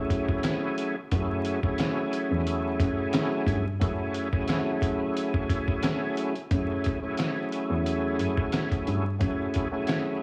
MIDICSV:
0, 0, Header, 1, 4, 480
1, 0, Start_track
1, 0, Key_signature, 3, "minor"
1, 0, Tempo, 674157
1, 796, Time_signature, 4, 2, 24, 8
1, 7281, End_track
2, 0, Start_track
2, 0, Title_t, "Tonewheel organ"
2, 0, Program_c, 0, 16
2, 0, Note_on_c, 0, 54, 94
2, 0, Note_on_c, 0, 57, 92
2, 0, Note_on_c, 0, 61, 91
2, 0, Note_on_c, 0, 64, 90
2, 0, Note_on_c, 0, 68, 104
2, 677, Note_off_c, 0, 54, 0
2, 679, Note_off_c, 0, 57, 0
2, 681, Note_off_c, 0, 61, 0
2, 683, Note_off_c, 0, 64, 0
2, 685, Note_off_c, 0, 68, 0
2, 795, Note_on_c, 0, 54, 94
2, 799, Note_on_c, 0, 57, 87
2, 803, Note_on_c, 0, 61, 96
2, 806, Note_on_c, 0, 64, 78
2, 810, Note_on_c, 0, 68, 113
2, 1134, Note_off_c, 0, 54, 0
2, 1136, Note_off_c, 0, 57, 0
2, 1138, Note_off_c, 0, 61, 0
2, 1140, Note_off_c, 0, 64, 0
2, 1142, Note_off_c, 0, 68, 0
2, 1161, Note_on_c, 0, 54, 93
2, 1165, Note_on_c, 0, 57, 88
2, 1169, Note_on_c, 0, 61, 81
2, 1172, Note_on_c, 0, 64, 96
2, 1176, Note_on_c, 0, 68, 101
2, 2598, Note_off_c, 0, 54, 0
2, 2600, Note_off_c, 0, 57, 0
2, 2602, Note_off_c, 0, 61, 0
2, 2604, Note_off_c, 0, 64, 0
2, 2606, Note_off_c, 0, 68, 0
2, 2701, Note_on_c, 0, 54, 93
2, 2705, Note_on_c, 0, 57, 89
2, 2709, Note_on_c, 0, 61, 92
2, 2713, Note_on_c, 0, 64, 89
2, 2716, Note_on_c, 0, 68, 111
2, 3047, Note_off_c, 0, 54, 0
2, 3049, Note_off_c, 0, 57, 0
2, 3051, Note_off_c, 0, 61, 0
2, 3053, Note_off_c, 0, 64, 0
2, 3055, Note_off_c, 0, 68, 0
2, 3079, Note_on_c, 0, 54, 94
2, 3082, Note_on_c, 0, 57, 90
2, 3086, Note_on_c, 0, 61, 91
2, 3090, Note_on_c, 0, 64, 91
2, 3093, Note_on_c, 0, 68, 103
2, 4517, Note_off_c, 0, 54, 0
2, 4519, Note_off_c, 0, 57, 0
2, 4521, Note_off_c, 0, 61, 0
2, 4523, Note_off_c, 0, 64, 0
2, 4524, Note_off_c, 0, 68, 0
2, 4637, Note_on_c, 0, 54, 89
2, 4640, Note_on_c, 0, 57, 82
2, 4644, Note_on_c, 0, 61, 90
2, 4648, Note_on_c, 0, 64, 77
2, 4652, Note_on_c, 0, 68, 104
2, 4975, Note_off_c, 0, 54, 0
2, 4977, Note_off_c, 0, 57, 0
2, 4979, Note_off_c, 0, 61, 0
2, 4980, Note_off_c, 0, 64, 0
2, 4982, Note_off_c, 0, 68, 0
2, 5001, Note_on_c, 0, 54, 88
2, 5005, Note_on_c, 0, 57, 84
2, 5008, Note_on_c, 0, 61, 77
2, 5012, Note_on_c, 0, 64, 89
2, 5016, Note_on_c, 0, 68, 99
2, 6438, Note_off_c, 0, 54, 0
2, 6440, Note_off_c, 0, 57, 0
2, 6442, Note_off_c, 0, 61, 0
2, 6444, Note_off_c, 0, 64, 0
2, 6446, Note_off_c, 0, 68, 0
2, 6542, Note_on_c, 0, 54, 89
2, 6546, Note_on_c, 0, 57, 88
2, 6549, Note_on_c, 0, 61, 88
2, 6553, Note_on_c, 0, 64, 85
2, 6557, Note_on_c, 0, 68, 106
2, 6888, Note_off_c, 0, 54, 0
2, 6890, Note_off_c, 0, 57, 0
2, 6891, Note_off_c, 0, 61, 0
2, 6893, Note_off_c, 0, 64, 0
2, 6895, Note_off_c, 0, 68, 0
2, 6919, Note_on_c, 0, 54, 90
2, 6922, Note_on_c, 0, 57, 88
2, 6926, Note_on_c, 0, 61, 89
2, 6930, Note_on_c, 0, 64, 87
2, 6934, Note_on_c, 0, 68, 101
2, 7281, Note_off_c, 0, 54, 0
2, 7281, Note_off_c, 0, 57, 0
2, 7281, Note_off_c, 0, 61, 0
2, 7281, Note_off_c, 0, 64, 0
2, 7281, Note_off_c, 0, 68, 0
2, 7281, End_track
3, 0, Start_track
3, 0, Title_t, "Cello"
3, 0, Program_c, 1, 42
3, 796, Note_on_c, 1, 42, 113
3, 1074, Note_off_c, 1, 42, 0
3, 1646, Note_on_c, 1, 40, 92
3, 1987, Note_off_c, 1, 40, 0
3, 1991, Note_on_c, 1, 42, 91
3, 2174, Note_off_c, 1, 42, 0
3, 2467, Note_on_c, 1, 43, 99
3, 2651, Note_off_c, 1, 43, 0
3, 2716, Note_on_c, 1, 42, 110
3, 4018, Note_off_c, 1, 42, 0
3, 4636, Note_on_c, 1, 42, 106
3, 4914, Note_off_c, 1, 42, 0
3, 5486, Note_on_c, 1, 40, 89
3, 5831, Note_off_c, 1, 40, 0
3, 5835, Note_on_c, 1, 42, 87
3, 6016, Note_off_c, 1, 42, 0
3, 6315, Note_on_c, 1, 43, 96
3, 6496, Note_off_c, 1, 43, 0
3, 6556, Note_on_c, 1, 42, 103
3, 7281, Note_off_c, 1, 42, 0
3, 7281, End_track
4, 0, Start_track
4, 0, Title_t, "Drums"
4, 72, Note_on_c, 9, 36, 92
4, 74, Note_on_c, 9, 42, 72
4, 143, Note_off_c, 9, 36, 0
4, 146, Note_off_c, 9, 42, 0
4, 203, Note_on_c, 9, 36, 99
4, 274, Note_off_c, 9, 36, 0
4, 308, Note_on_c, 9, 42, 99
4, 312, Note_on_c, 9, 37, 91
4, 318, Note_on_c, 9, 38, 108
4, 379, Note_off_c, 9, 42, 0
4, 384, Note_off_c, 9, 37, 0
4, 389, Note_off_c, 9, 38, 0
4, 555, Note_on_c, 9, 42, 81
4, 626, Note_off_c, 9, 42, 0
4, 794, Note_on_c, 9, 42, 85
4, 796, Note_on_c, 9, 36, 121
4, 865, Note_off_c, 9, 42, 0
4, 867, Note_off_c, 9, 36, 0
4, 1030, Note_on_c, 9, 42, 81
4, 1101, Note_off_c, 9, 42, 0
4, 1162, Note_on_c, 9, 36, 108
4, 1233, Note_off_c, 9, 36, 0
4, 1268, Note_on_c, 9, 42, 86
4, 1278, Note_on_c, 9, 37, 96
4, 1283, Note_on_c, 9, 38, 121
4, 1339, Note_off_c, 9, 42, 0
4, 1349, Note_off_c, 9, 37, 0
4, 1355, Note_off_c, 9, 38, 0
4, 1516, Note_on_c, 9, 42, 73
4, 1587, Note_off_c, 9, 42, 0
4, 1757, Note_on_c, 9, 42, 88
4, 1828, Note_off_c, 9, 42, 0
4, 1992, Note_on_c, 9, 36, 96
4, 1994, Note_on_c, 9, 42, 74
4, 2063, Note_off_c, 9, 36, 0
4, 2066, Note_off_c, 9, 42, 0
4, 2228, Note_on_c, 9, 42, 97
4, 2233, Note_on_c, 9, 37, 90
4, 2238, Note_on_c, 9, 38, 107
4, 2299, Note_off_c, 9, 42, 0
4, 2304, Note_off_c, 9, 37, 0
4, 2309, Note_off_c, 9, 38, 0
4, 2467, Note_on_c, 9, 36, 92
4, 2475, Note_on_c, 9, 42, 79
4, 2538, Note_off_c, 9, 36, 0
4, 2546, Note_off_c, 9, 42, 0
4, 2715, Note_on_c, 9, 42, 87
4, 2716, Note_on_c, 9, 36, 123
4, 2786, Note_off_c, 9, 42, 0
4, 2787, Note_off_c, 9, 36, 0
4, 2951, Note_on_c, 9, 42, 81
4, 3022, Note_off_c, 9, 42, 0
4, 3082, Note_on_c, 9, 36, 107
4, 3153, Note_off_c, 9, 36, 0
4, 3187, Note_on_c, 9, 42, 83
4, 3198, Note_on_c, 9, 37, 97
4, 3203, Note_on_c, 9, 38, 121
4, 3259, Note_off_c, 9, 42, 0
4, 3269, Note_off_c, 9, 37, 0
4, 3275, Note_off_c, 9, 38, 0
4, 3432, Note_on_c, 9, 36, 88
4, 3436, Note_on_c, 9, 42, 76
4, 3503, Note_off_c, 9, 36, 0
4, 3508, Note_off_c, 9, 42, 0
4, 3678, Note_on_c, 9, 42, 88
4, 3749, Note_off_c, 9, 42, 0
4, 3802, Note_on_c, 9, 36, 102
4, 3873, Note_off_c, 9, 36, 0
4, 3912, Note_on_c, 9, 36, 92
4, 3915, Note_on_c, 9, 42, 75
4, 3983, Note_off_c, 9, 36, 0
4, 3986, Note_off_c, 9, 42, 0
4, 4043, Note_on_c, 9, 36, 95
4, 4114, Note_off_c, 9, 36, 0
4, 4148, Note_on_c, 9, 42, 97
4, 4153, Note_on_c, 9, 37, 88
4, 4158, Note_on_c, 9, 38, 109
4, 4219, Note_off_c, 9, 42, 0
4, 4224, Note_off_c, 9, 37, 0
4, 4229, Note_off_c, 9, 38, 0
4, 4395, Note_on_c, 9, 42, 79
4, 4466, Note_off_c, 9, 42, 0
4, 4525, Note_on_c, 9, 42, 51
4, 4597, Note_off_c, 9, 42, 0
4, 4635, Note_on_c, 9, 42, 83
4, 4636, Note_on_c, 9, 36, 117
4, 4706, Note_off_c, 9, 42, 0
4, 4708, Note_off_c, 9, 36, 0
4, 4871, Note_on_c, 9, 42, 79
4, 4886, Note_on_c, 9, 36, 99
4, 4942, Note_off_c, 9, 42, 0
4, 4957, Note_off_c, 9, 36, 0
4, 5108, Note_on_c, 9, 42, 83
4, 5118, Note_on_c, 9, 37, 90
4, 5123, Note_on_c, 9, 38, 115
4, 5179, Note_off_c, 9, 42, 0
4, 5189, Note_off_c, 9, 37, 0
4, 5195, Note_off_c, 9, 38, 0
4, 5357, Note_on_c, 9, 42, 73
4, 5428, Note_off_c, 9, 42, 0
4, 5598, Note_on_c, 9, 42, 87
4, 5669, Note_off_c, 9, 42, 0
4, 5835, Note_on_c, 9, 42, 70
4, 5906, Note_off_c, 9, 42, 0
4, 5963, Note_on_c, 9, 36, 96
4, 6034, Note_off_c, 9, 36, 0
4, 6068, Note_on_c, 9, 42, 92
4, 6073, Note_on_c, 9, 37, 81
4, 6078, Note_on_c, 9, 38, 105
4, 6139, Note_off_c, 9, 42, 0
4, 6144, Note_off_c, 9, 37, 0
4, 6149, Note_off_c, 9, 38, 0
4, 6205, Note_on_c, 9, 36, 91
4, 6207, Note_on_c, 9, 42, 45
4, 6276, Note_off_c, 9, 36, 0
4, 6278, Note_off_c, 9, 42, 0
4, 6316, Note_on_c, 9, 42, 76
4, 6387, Note_off_c, 9, 42, 0
4, 6555, Note_on_c, 9, 42, 78
4, 6556, Note_on_c, 9, 36, 116
4, 6626, Note_off_c, 9, 42, 0
4, 6628, Note_off_c, 9, 36, 0
4, 6791, Note_on_c, 9, 42, 80
4, 6806, Note_on_c, 9, 36, 99
4, 6863, Note_off_c, 9, 42, 0
4, 6877, Note_off_c, 9, 36, 0
4, 7028, Note_on_c, 9, 42, 82
4, 7039, Note_on_c, 9, 37, 95
4, 7044, Note_on_c, 9, 38, 113
4, 7099, Note_off_c, 9, 42, 0
4, 7110, Note_off_c, 9, 37, 0
4, 7115, Note_off_c, 9, 38, 0
4, 7281, End_track
0, 0, End_of_file